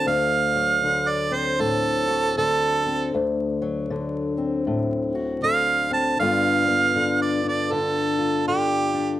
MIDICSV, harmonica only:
0, 0, Header, 1, 2, 480
1, 0, Start_track
1, 0, Tempo, 765306
1, 36, Time_signature, 4, 2, 24, 8
1, 5769, End_track
2, 0, Start_track
2, 0, Title_t, "Harmonica"
2, 0, Program_c, 0, 22
2, 48, Note_on_c, 0, 77, 88
2, 685, Note_on_c, 0, 74, 73
2, 695, Note_off_c, 0, 77, 0
2, 839, Note_on_c, 0, 72, 70
2, 848, Note_off_c, 0, 74, 0
2, 1008, Note_on_c, 0, 69, 85
2, 1017, Note_off_c, 0, 72, 0
2, 1470, Note_off_c, 0, 69, 0
2, 1491, Note_on_c, 0, 69, 99
2, 1952, Note_off_c, 0, 69, 0
2, 3410, Note_on_c, 0, 77, 93
2, 3717, Note_off_c, 0, 77, 0
2, 3721, Note_on_c, 0, 81, 78
2, 3877, Note_off_c, 0, 81, 0
2, 3887, Note_on_c, 0, 77, 105
2, 4505, Note_off_c, 0, 77, 0
2, 4527, Note_on_c, 0, 74, 70
2, 4679, Note_off_c, 0, 74, 0
2, 4693, Note_on_c, 0, 74, 72
2, 4845, Note_on_c, 0, 69, 76
2, 4855, Note_off_c, 0, 74, 0
2, 5307, Note_off_c, 0, 69, 0
2, 5320, Note_on_c, 0, 67, 89
2, 5769, Note_off_c, 0, 67, 0
2, 5769, End_track
0, 0, End_of_file